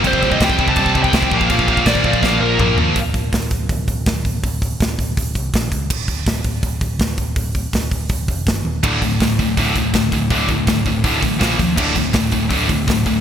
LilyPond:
<<
  \new Staff \with { instrumentName = "Lead electric guitar" } { \time 4/4 \key d \phrygian \tempo 4 = 163 \tuplet 3/2 { c''4 ees''8 g''4 a''8 a''4 g''8~ g''4 f''8~ } | \tuplet 3/2 { f''4 f''8 } d''8 d''8 f''8 bes'4 r8 | r1 | r1 |
r1 | r1 | r1 | r1 |
r1 | }
  \new Staff \with { instrumentName = "Ambient pad" } { \time 4/4 \key d \phrygian <ees g c' g' c''>2.~ <ees g c' g' c''>8 <d f bes f' bes'>8~ | <d f bes f' bes'>1 | r1 | r1 |
r1 | r1 | r1 | r1 |
r1 | }
  \new Staff \with { instrumentName = "Distorted electric guitar" } { \clef bass \time 4/4 \key d \phrygian <c g c'>8 <c g c'>8 <c g c'>8 <c g c'>8 <c g c'>8 <c g c'>8 <c g c'>8 <bes, f bes>8 | <bes, f bes>8 <bes, f bes>8 <bes, f bes>8 <bes, f bes>8 <bes, f bes>8 <bes, f bes>8 <bes, f bes>8 <bes, f bes>8 | r1 | r1 |
r1 | r1 | <d, a, d>8 <d, a,>8 <d, a,>8 <d, a,>8 <d, a, d>8 <d, a,>8 <d, a,>8 <d, a,>8 | <d, a, d>8 <d, a,>8 <d, a,>8 <d, a,>8 <d, a, d>8 <d, a,>8 <bes, f bes>8 <bes, f>8 |
<d, a, d>8 <d, a,>8 <d, a,>8 <d, a,>8 <d, a, d>8 <d, a,>8 <d, a,>8 <d, a,>8 | }
  \new Staff \with { instrumentName = "Distorted electric guitar" } { \clef bass \time 4/4 \key d \phrygian <c g c'>8 <c g c'>8 <c g c'>8 <c g c'>8 <c g c'>8 <c g c'>8 <c g c'>8 <bes, f bes>8 | <bes, f bes>8 <bes, f bes>8 <bes, f bes>8 <bes, f bes>8 <bes, f bes>8 <bes, f bes>8 <bes, f bes>8 <bes, f bes>8 | r1 | r1 |
r1 | r1 | <d, a, d>8 <d, a,>8 <d, a,>8 <d, a,>8 <d, a, d>8 <d, a,>8 <d, a,>8 <d, a,>8 | <d, a, d>8 <d, a,>8 <d, a,>8 <d, a,>8 <d, a, d>8 <d, a,>8 <bes, f bes>8 <bes, f>8 |
<d, a, d>8 <d, a,>8 <d, a,>8 <d, a,>8 <d, a, d>8 <d, a,>8 <d, a,>8 <d, a,>8 | }
  \new Staff \with { instrumentName = "Picked electric bass" } { \clef bass \time 4/4 \key d \phrygian c,4 c,8 c,8 c,8 c,8 c,8 bes,,8 | bes,,4 bes,,8 bes,,8 bes,,8 bes,,8 bes,,8 ees,8 | d,,8 d,,8 d,,8 d,,8 d,,8 d,,8 d,,8 d,,8 | d,,4 d,,8 d,,8 d,,8 c,8 bes,,8 des,8 |
d,,8 d,,8 d,,8 d,,8 d,,8 d,,8 d,,8 d,,8 | d,,4 d,,8 d,,8 d,,8 f,,8 g,,8 ees,,8 | d,,8 d,,8 d,,8 d,,8 d,,8 d,,8 d,,8 d,,8 | d,,4 d,,8 d,,8 d,,8 a,,8 bes,,8 ees,8 |
d,,8 d,,8 d,,8 d,,8 d,,8 d,,8 d,,8 d,,8 | }
  \new DrumStaff \with { instrumentName = "Drums" } \drummode { \time 4/4 <cymc bd>16 bd16 bd16 bd16 <cymc bd sn>16 bd16 bd16 bd16 <cymc bd>16 bd16 bd16 bd16 <cymc bd sn>16 bd16 bd16 bd16 | <cymc bd>16 bd16 bd16 bd16 <cymc bd sn>16 bd16 bd16 bd16 <bd sn>4 <bd toml>8 tomfh8 | <hho bd>8 <hho bd>8 <hho bd sn>8 <hho bd>8 <hho bd>8 <hho bd>8 <hho bd sn>8 <hho bd>8 | <hho bd>8 <hho bd>8 <hho bd sn>8 <hho bd>8 <hho bd>8 <hho bd>8 <hho bd sn>8 <hho bd>8 |
<cymc bd>8 <hho bd>8 <hho bd sn>8 <hho bd>8 <hho bd>8 <hho bd>8 <hho bd sn>8 <hho bd>8 | <hho bd>8 <hho bd>8 <hho bd sn>8 <hho bd>8 <hho bd>8 <hho bd>8 <hho bd sn>8 tommh8 | <cymc bd>8 <hho bd>8 <hho bd sn>8 <hho bd>8 <hho bd>8 <hho bd>8 <hho bd sn>8 <hho bd>8 | <hho bd>8 <hho bd>8 <hho bd sn>8 <hho bd>8 <hho bd>8 <hho bd>8 <hho bd sn>8 <hho bd>8 |
<cymc bd>8 <hho bd>8 <hho bd sn>8 <hho bd>8 <hho bd>8 <hho bd>8 <hho bd sn>8 <hho bd>8 | }
>>